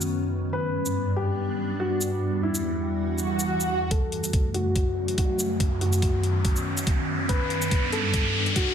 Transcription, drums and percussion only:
0.01 shaker medium
0.86 shaker medium
2.01 shaker medium
2.55 shaker medium
3.18 shaker soft
3.39 shaker medium
3.60 shaker medium
3.91 kick medium
3.91 closed hi-hat medium
4.12 closed hi-hat medium
4.24 closed hi-hat medium
4.24 shaker medium
4.33 kick loud
4.33 closed hi-hat medium
4.54 closed hi-hat medium
4.76 kick medium
4.76 closed hi-hat medium
5.08 closed hi-hat medium
5.18 kick medium
5.18 closed hi-hat medium
5.39 shaker medium
5.60 kick loud
5.60 closed hi-hat medium
5.81 closed hi-hat medium
5.93 closed hi-hat medium
5.93 shaker medium
6.02 kick loud
6.02 closed hi-hat medium
6.23 closed hi-hat medium
6.45 kick medium
6.45 closed hi-hat medium
6.56 shaker soft
6.77 closed hi-hat medium
6.77 shaker medium
6.87 kick medium
6.87 closed hi-hat medium
7.29 kick loud
7.29 closed hi-hat medium
7.50 closed hi-hat medium
7.62 closed hi-hat medium
7.62 shaker medium
7.71 kick loud
7.71 closed hi-hat medium
7.92 closed hi-hat medium
8.14 kick medium
8.14 closed hi-hat medium
8.46 closed hi-hat soft
8.56 kick medium
8.56 closed hi-hat medium

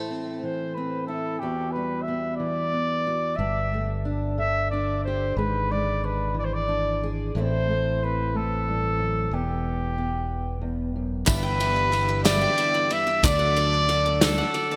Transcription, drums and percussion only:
11.27 kick loud
11.27 clap loud
11.27 ride medium
11.27 tambourine medium
11.60 ride medium
11.60 tambourine soft
11.77 clap soft
11.93 clap soft
11.93 ride medium
11.93 tambourine soft
12.09 clap soft
12.25 snare loud
12.25 clap medium
12.25 ride medium
12.25 tambourine medium
12.58 ride medium
12.58 tambourine soft
12.75 clap soft
12.90 ride medium
13.09 clap soft
13.23 kick loud
13.23 clap loud
13.23 ride medium
13.23 tambourine medium
13.56 ride medium
13.56 tambourine soft
13.74 clap soft
13.89 clap soft
13.89 ride medium
13.89 tambourine soft
14.06 clap soft
14.21 snare loud
14.21 clap medium
14.21 ride medium
14.21 tambourine loud
14.54 ride medium
14.54 tambourine soft
14.72 clap soft

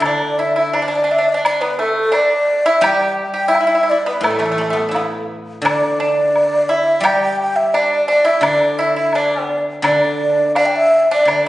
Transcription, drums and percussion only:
0.02 high woodblock medium
0.75 high woodblock soft
1.45 high woodblock medium
2.13 high woodblock soft
2.84 high woodblock medium
3.54 high woodblock soft
4.24 high woodblock medium
4.94 high woodblock soft
4.94 low woodblock soft
5.66 high woodblock medium
6.36 high woodblock soft
7.05 high woodblock medium
7.74 high woodblock soft
8.43 high woodblock medium
9.13 high woodblock soft
9.84 high woodblock medium
10.55 high woodblock soft
10.55 low woodblock soft
11.28 high woodblock medium

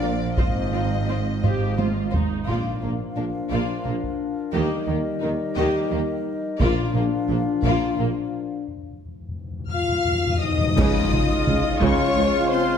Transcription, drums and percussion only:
0.38 taiko medium
1.44 taiko low-mid medium
1.79 taiko high medium
2.14 taiko low medium
2.49 taiko soft
4.04 taiko soft
6.60 taiko medium
7.62 taiko medium
10.77 concert bass drum medium
10.77 taiko medium
10.77 crash medium
11.13 taiko mid medium
11.47 taiko mid medium
11.82 taiko medium

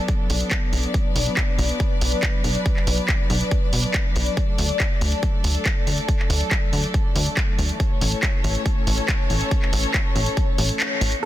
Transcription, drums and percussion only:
0.08 kick loud
0.08 closed hi-hat medium
0.30 open hi-hat loud
0.40 closed hi-hat medium
0.51 kick loud
0.51 clap loud
0.51 closed hi-hat medium
0.73 open hi-hat medium
0.83 closed hi-hat medium
0.94 kick loud
0.94 closed hi-hat medium
1.16 open hi-hat loud
1.26 closed hi-hat medium
1.37 kick loud
1.37 clap loud
1.37 closed hi-hat medium
1.59 open hi-hat loud
1.69 closed hi-hat medium
1.80 kick loud
1.80 closed hi-hat medium
2.01 open hi-hat loud
2.12 closed hi-hat medium
2.23 kick loud
2.23 clap loud
2.23 closed hi-hat medium
2.44 open hi-hat medium
2.55 closed hi-hat medium
2.66 kick loud
2.66 closed hi-hat medium
2.76 clap soft
2.87 open hi-hat loud
2.98 closed hi-hat medium
3.09 kick loud
3.09 clap loud
3.09 closed hi-hat medium
3.30 open hi-hat medium
3.41 closed hi-hat medium
3.51 kick loud
3.51 closed hi-hat medium
3.73 open hi-hat loud
3.84 closed hi-hat medium
3.94 kick loud
3.94 clap loud
3.94 closed hi-hat medium
4.16 open hi-hat medium
4.26 closed hi-hat medium
4.37 kick loud
4.37 closed hi-hat medium
4.58 open hi-hat loud
4.69 closed hi-hat medium
4.80 kick loud
4.80 clap loud
4.80 closed hi-hat medium
5.01 open hi-hat medium
5.12 closed hi-hat medium
5.23 kick loud
5.23 closed hi-hat medium
5.44 open hi-hat loud
5.55 closed hi-hat medium
5.66 kick loud
5.66 clap loud
5.66 closed hi-hat medium
5.87 open hi-hat medium
5.98 closed hi-hat medium
6.08 kick loud
6.08 closed hi-hat medium
6.19 clap soft
6.30 open hi-hat loud
6.41 closed hi-hat medium
6.51 kick loud
6.51 clap loud
6.51 closed hi-hat medium
6.73 open hi-hat medium
6.84 closed hi-hat medium
6.94 kick loud
6.94 closed hi-hat medium
7.16 open hi-hat medium
7.26 closed hi-hat medium
7.37 kick loud
7.37 clap loud
7.37 closed hi-hat medium
7.59 open hi-hat medium
7.69 closed hi-hat medium
7.80 kick loud
7.80 closed hi-hat medium
8.01 open hi-hat loud
8.12 closed hi-hat medium
8.23 kick loud
8.23 clap loud
8.23 closed hi-hat medium
8.44 open hi-hat medium
8.55 closed hi-hat medium
8.66 kick loud
8.66 closed hi-hat medium
8.87 open hi-hat loud
8.98 closed hi-hat medium
9.08 kick loud
9.08 clap loud
9.08 closed hi-hat medium
9.30 open hi-hat medium
9.41 closed hi-hat medium
9.51 kick loud
9.51 closed hi-hat medium
9.62 clap soft
9.73 open hi-hat loud
9.84 closed hi-hat medium
9.94 kick loud
9.94 clap loud
9.94 closed hi-hat medium
10.16 open hi-hat medium
10.26 closed hi-hat medium
10.37 kick loud
10.37 closed hi-hat medium
10.58 open hi-hat loud
10.69 closed hi-hat medium
10.80 clap loud
10.80 closed hi-hat medium
11.01 open hi-hat medium
11.12 closed hi-hat medium

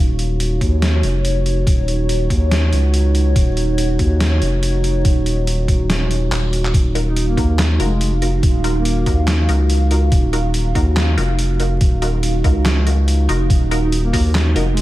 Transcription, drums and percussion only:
0.19 closed hi-hat soft
0.40 closed hi-hat medium
0.61 kick medium
0.61 closed hi-hat soft
0.82 snare loud
0.82 closed hi-hat medium
1.03 closed hi-hat soft
1.25 closed hi-hat medium
1.46 closed hi-hat soft
1.67 kick loud
1.67 closed hi-hat medium
1.88 closed hi-hat medium
2.09 closed hi-hat medium
2.30 kick medium
2.30 closed hi-hat soft
2.51 snare loud
2.51 closed hi-hat medium
2.73 closed hi-hat medium
2.94 closed hi-hat medium
3.15 closed hi-hat soft
3.36 kick loud
3.36 closed hi-hat medium
3.57 closed hi-hat medium
3.78 closed hi-hat medium
3.99 kick medium
3.99 closed hi-hat medium
4.20 snare loud
4.20 closed hi-hat medium
4.42 closed hi-hat medium
4.63 closed hi-hat medium
4.84 closed hi-hat medium
5.05 kick loud
5.05 closed hi-hat medium
5.26 closed hi-hat medium
5.47 closed hi-hat medium
5.68 kick medium
5.68 closed hi-hat medium
5.90 snare loud
5.90 closed hi-hat medium
6.11 closed hi-hat medium
6.32 clap loud
6.32 closed hi-hat medium
6.53 closed hi-hat medium
6.65 clap medium
6.74 kick loud
6.74 closed hi-hat medium
6.95 closed hi-hat medium
7.16 closed hi-hat medium
7.37 kick medium
7.37 closed hi-hat medium
7.59 snare loud
7.59 clap medium
7.59 closed hi-hat medium
7.80 closed hi-hat medium
8.01 closed hi-hat medium
8.22 closed hi-hat medium
8.43 kick loud
8.43 closed hi-hat medium
8.64 closed hi-hat medium
8.85 closed hi-hat medium
9.06 kick medium
9.06 closed hi-hat medium
9.27 snare loud
9.27 clap medium
9.27 closed hi-hat medium
9.49 closed hi-hat medium
9.70 closed hi-hat medium
9.91 closed hi-hat medium
10.12 kick loud
10.12 closed hi-hat medium
10.33 closed hi-hat soft
10.54 closed hi-hat medium
10.75 kick medium
10.75 closed hi-hat soft
10.96 snare loud
10.96 clap medium
10.96 closed hi-hat medium
11.18 closed hi-hat soft
11.39 closed hi-hat medium
11.60 closed hi-hat soft
11.81 kick loud
11.81 closed hi-hat medium
12.02 closed hi-hat soft
12.23 closed hi-hat medium
12.44 kick medium
12.44 closed hi-hat soft
12.65 snare loud
12.65 clap medium
12.65 closed hi-hat medium
12.87 closed hi-hat medium
13.08 closed hi-hat medium
13.29 closed hi-hat soft
13.50 kick loud
13.50 closed hi-hat medium
13.71 closed hi-hat medium
13.92 closed hi-hat medium
14.13 kick medium
14.13 open hi-hat medium
14.35 snare loud
14.35 clap medium
14.35 closed hi-hat medium
14.56 closed hi-hat soft
14.77 closed hi-hat medium

